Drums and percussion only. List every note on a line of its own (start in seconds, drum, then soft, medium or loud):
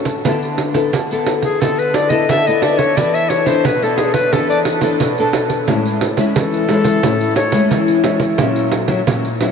0.05 pandeiro medium
0.25 pandeiro medium
0.43 pandeiro soft
0.58 pandeiro medium
0.74 pandeiro medium
0.93 pandeiro medium
1.11 pandeiro soft
1.26 pandeiro medium
1.42 pandeiro medium
1.62 pandeiro medium
1.79 pandeiro soft
1.94 pandeiro medium
2.10 pandeiro medium
2.29 pandeiro medium
2.47 pandeiro soft
2.62 pandeiro medium
2.78 pandeiro medium
2.97 pandeiro medium
3.15 pandeiro soft
3.30 pandeiro medium
3.46 pandeiro medium
3.65 pandeiro medium
3.82 pandeiro soft
3.98 pandeiro medium
4.14 pandeiro medium
4.33 pandeiro medium
4.51 pandeiro soft
4.65 pandeiro medium
4.81 pandeiro medium
5.00 pandeiro medium
5.18 pandeiro soft
5.33 pandeiro medium
5.50 pandeiro medium
5.68 pandeiro medium
5.86 pandeiro soft
6.01 pandeiro medium
6.17 pandeiro medium
6.36 pandeiro medium
6.54 pandeiro soft
6.69 pandeiro medium
6.84 pandeiro medium
7.03 pandeiro medium
7.21 pandeiro soft
7.36 pandeiro medium
7.52 pandeiro medium
7.71 pandeiro medium
7.88 pandeiro soft
8.04 pandeiro medium
8.20 pandeiro medium
8.38 pandeiro medium
8.56 pandeiro soft
8.72 pandeiro medium
8.88 pandeiro medium
9.07 pandeiro medium
9.25 pandeiro soft
9.41 pandeiro medium